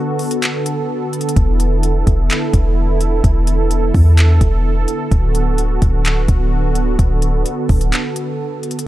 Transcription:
0.00 5.08 D3 medium
0.00 5.08 B3 medium
0.00 1.33 F#4 medium
0.00 8.83 A4 loud
0.19 closed hi-hat soft
0.19 open hi-hat medium
0.31 closed hi-hat medium
0.43 clap loud
0.43 closed hi-hat medium
0.66 closed hi-hat medium
1.13 closed hi-hat soft
1.21 closed hi-hat medium
1.29 closed hi-hat medium
1.36 2.04 E1 loud
1.36 5.08 E4 medium
1.36 kick loud
1.36 closed hi-hat medium
1.60 closed hi-hat medium
1.83 closed hi-hat medium
2.07 2.29 E1 loud
2.07 kick medium
2.07 closed hi-hat medium
2.30 clap loud
2.30 closed hi-hat medium
2.54 3.21 E1 loud
2.54 kick loud
2.54 closed hi-hat medium
3.01 closed hi-hat medium
3.24 3.92 E1 loud
3.24 kick loud
3.24 closed hi-hat medium
3.47 closed hi-hat medium
3.71 closed hi-hat medium
3.94 4.39 E2 loud
3.94 kick medium
3.94 open hi-hat medium
4.18 clap loud
4.18 closed hi-hat medium
4.41 4.86 E1 loud
4.41 kick loud
4.41 closed hi-hat medium
4.88 closed hi-hat medium
5.12 5.79 D1 loud
5.12 8.83 D3 medium
5.12 8.83 B3 medium
5.12 8.83 F#4 medium
5.12 kick loud
5.12 closed hi-hat medium
5.35 closed hi-hat medium
5.58 closed hi-hat medium
5.82 6.27 D1 loud
5.82 kick medium
5.82 closed hi-hat medium
6.05 clap loud
6.05 closed hi-hat medium
6.28 6.96 D1 loud
6.28 kick loud
6.28 closed hi-hat medium
6.75 closed hi-hat medium
6.99 7.44 D1 loud
6.99 kick loud
6.99 closed hi-hat medium
7.22 closed hi-hat medium
7.46 closed hi-hat medium
7.69 7.92 D1 loud
7.69 kick loud
7.69 closed hi-hat soft
7.69 open hi-hat medium
7.81 closed hi-hat medium
7.93 clap loud
7.93 closed hi-hat medium
8.16 closed hi-hat medium
8.63 closed hi-hat soft
8.71 closed hi-hat medium
8.79 closed hi-hat medium

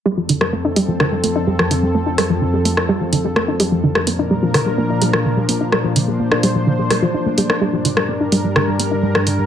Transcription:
0.05 3.80 F2 medium
0.05 3.80 F3 medium
0.05 0.09 G3 medium
0.05 3.80 C4 medium
0.05 3.80 A4 medium
0.17 0.25 F3 medium
0.29 0.32 D3 medium
0.29 open hi-hat medium
0.41 0.49 G3 medium
0.41 cross-stick soft
0.53 0.58 A3 medium
0.65 0.68 D4 medium
0.76 0.79 G3 loud
0.76 open hi-hat medium
0.88 0.96 F3 medium
1.00 1.03 D3 medium
1.00 cross-stick soft
1.12 1.19 G3 medium
1.24 1.29 A3 medium
1.24 open hi-hat loud
1.36 1.39 D4 medium
1.47 1.50 G3 medium
1.59 1.67 F3 medium
1.59 cross-stick soft
1.71 1.74 D3 medium
1.71 open hi-hat medium
1.83 1.90 G3 medium
1.95 2.00 A3 medium
2.06 2.09 D4 medium
2.18 2.21 G3 medium
2.18 cross-stick soft
2.18 open hi-hat loud
2.30 2.37 F3 medium
2.42 2.45 D3 medium
2.54 2.61 G3 medium
2.65 2.70 A3 medium
2.65 open hi-hat medium
2.77 2.80 D4 medium
2.77 cross-stick soft
2.89 2.92 G3 medium
3.01 3.08 F3 medium
3.13 3.16 D3 medium
3.13 open hi-hat loud
3.25 3.32 G3 medium
3.36 3.41 A3 medium
3.36 cross-stick soft
3.48 3.51 D4 medium
3.60 3.63 G3 loud
3.60 open hi-hat medium
3.72 3.79 F3 medium
3.83 7.58 A#2 medium
3.83 3.87 D3 medium
3.83 7.58 F3 medium
3.83 9.46 D4 medium
3.83 5.70 A#4 medium
3.95 4.03 G3 medium
3.95 cross-stick soft
4.07 4.12 A#3 medium
4.07 open hi-hat loud
4.19 4.22 D4 medium
4.31 4.34 G3 medium
4.43 4.50 F3 medium
4.54 4.57 D3 medium
4.54 cross-stick soft
4.54 open hi-hat loud
4.66 4.74 G3 medium
4.78 4.83 A#3 medium
4.90 4.93 D4 medium
5.02 5.05 G3 medium
5.02 open hi-hat loud
5.13 5.21 F3 medium
5.13 cross-stick soft
5.25 5.28 D3 medium
5.37 5.45 G3 medium
5.49 5.54 A#3 medium
5.49 open hi-hat loud
5.61 5.64 D4 medium
5.72 5.75 G3 medium
5.72 7.59 C5 medium
5.72 cross-stick soft
5.84 5.92 F3 medium
5.96 5.99 D3 medium
5.96 open hi-hat loud
6.08 6.15 G3 medium
6.20 6.25 A#3 medium
6.32 6.35 D4 medium
6.32 cross-stick soft
6.43 6.46 G3 loud
6.43 open hi-hat loud
6.55 6.63 F3 medium
6.67 6.70 D3 medium
6.79 6.86 G3 medium
6.91 6.98 G3 loud
6.91 cross-stick soft
6.91 open hi-hat loud
7.02 7.05 F3 loud
7.14 7.19 D4 medium
7.26 7.29 A3 medium
7.38 7.43 G3 loud
7.38 open hi-hat loud
7.50 7.55 D4 medium
7.50 cross-stick soft
7.61 9.46 G2 medium
7.61 9.46 G3 medium
7.61 7.64 G3 medium
7.61 9.46 A#4 medium
7.73 7.81 F3 medium
7.85 7.88 D3 medium
7.85 open hi-hat medium
7.97 8.04 G3 medium
7.97 cross-stick medium
8.09 8.14 A#3 medium
8.21 8.24 D4 medium
8.32 8.35 G3 loud
8.32 open hi-hat loud
8.44 8.52 F3 medium
8.56 8.59 D3 medium
8.56 cross-stick medium
8.68 8.75 G3 medium
8.79 8.85 A#3 medium
8.79 open hi-hat loud
8.91 8.94 D4 medium
9.03 9.06 G3 loud
9.15 9.23 F3 medium
9.15 cross-stick medium
9.27 9.30 D3 medium
9.27 open hi-hat medium
9.39 9.46 G3 medium

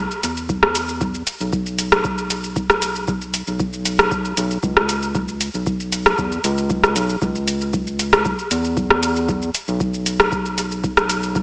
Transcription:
0.11 shaker soft
0.23 1.23 E2 medium
0.23 open hi-hat medium
0.23 shaker medium
0.37 shaker soft
0.49 kick loud
0.49 shaker soft
0.63 cross-stick medium
0.75 open hi-hat medium
0.75 shaker medium
0.89 shaker soft
1.01 kick loud
1.01 shaker soft
1.15 shaker soft
1.27 open hi-hat medium
1.27 shaker medium
1.40 3.43 B1 medium
1.40 shaker soft
1.53 kick loud
1.53 shaker soft
1.66 shaker soft
1.79 open hi-hat medium
1.79 shaker medium
1.92 cross-stick medium
1.92 shaker soft
2.04 kick loud
2.04 shaker soft
2.18 shaker soft
2.30 open hi-hat medium
2.30 shaker medium
2.44 shaker soft
2.56 kick loud
2.56 shaker soft
2.70 cross-stick medium
2.70 shaker soft
2.82 open hi-hat medium
2.82 shaker medium
2.96 shaker soft
3.08 kick loud
3.08 shaker soft
3.21 shaker soft
3.34 open hi-hat medium
3.34 shaker medium
3.47 4.33 B1 medium
3.47 shaker soft
3.60 kick loud
3.60 shaker soft
3.73 shaker soft
3.85 open hi-hat medium
3.85 shaker medium
3.99 cross-stick medium
3.99 shaker soft
4.11 kick loud
4.11 shaker soft
4.25 shaker soft
4.37 4.58 B1 loud
4.37 open hi-hat medium
4.37 shaker medium
4.51 shaker soft
4.63 5.49 C#2 loud
4.63 kick loud
4.63 shaker soft
4.77 cross-stick medium
4.89 open hi-hat medium
4.89 shaker medium
5.03 shaker soft
5.15 kick loud
5.15 shaker soft
5.28 shaker soft
5.41 open hi-hat medium
5.41 shaker medium
5.54 6.14 B1 medium
5.54 shaker soft
5.67 kick loud
5.67 shaker soft
5.80 shaker soft
5.92 open hi-hat medium
5.92 shaker medium
6.06 cross-stick medium
6.06 shaker soft
6.18 6.39 E2 medium
6.18 kick loud
6.18 shaker soft
6.32 shaker soft
6.44 6.95 C#2 loud
6.44 open hi-hat medium
6.44 shaker medium
6.58 shaker soft
6.70 kick loud
6.70 shaker soft
6.84 cross-stick medium
6.84 shaker soft
6.96 7.16 B1 medium
6.96 open hi-hat medium
6.96 shaker medium
7.09 shaker soft
7.22 8.34 C#2 loud
7.22 kick loud
7.22 shaker soft
7.35 shaker soft
7.48 open hi-hat medium
7.48 shaker medium
7.61 shaker soft
7.73 kick loud
7.73 shaker soft
7.87 shaker soft
7.99 open hi-hat medium
7.99 shaker medium
8.13 cross-stick medium
8.13 shaker soft
8.25 kick loud
8.25 shaker soft
8.39 shaker soft
8.51 9.50 E2 medium
8.51 open hi-hat medium
8.51 shaker medium
8.65 shaker soft
8.77 kick loud
8.77 shaker soft
8.90 cross-stick medium
9.03 open hi-hat medium
9.03 shaker medium
9.16 shaker soft
9.29 kick loud
9.29 shaker soft
9.42 shaker soft
9.54 open hi-hat medium
9.54 shaker medium
9.68 11.43 B1 medium
9.68 shaker soft
9.80 kick loud
9.80 shaker soft
9.94 shaker soft
10.06 open hi-hat medium
10.06 shaker medium
10.20 cross-stick medium
10.20 shaker soft
10.32 kick loud
10.32 shaker soft
10.46 shaker soft
10.58 open hi-hat medium
10.58 shaker medium
10.71 shaker soft
10.84 kick loud
10.84 shaker soft
10.97 cross-stick medium
10.97 shaker soft
11.09 open hi-hat medium
11.09 shaker medium
11.23 shaker soft
11.35 kick loud
11.35 shaker soft

